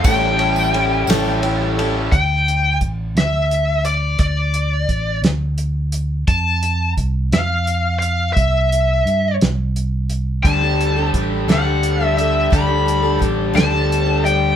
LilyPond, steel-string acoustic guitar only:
\new Staff \with { instrumentName = "Steel-string acoustic guitar" } { \time 6/8 \key a \minor \tempo 4. = 58 <a, e g cis' g' a'>4 <g cis' g' a'>8 <a, e g cis' g' a'>4 <g cis' g' a'>8 | \key d \mixolydian r2. | r2. | r2. |
r2. | <d g d' g' a'>16 <d' g' a'>8 <d' g' a'>16 <g d' g' a'>8 <d g d' g' a'>16 <d' g' a'>8 <d' g' a'>16 <g d' g' a'>8 | <d g d' g' a'>16 <d' g' a'>8 <d' g' a'>16 <g d' g' a'>8 <d g d' g' a'>16 <d' g' a'>8 <d' g' a'>16 <g d' g' a'>8 | }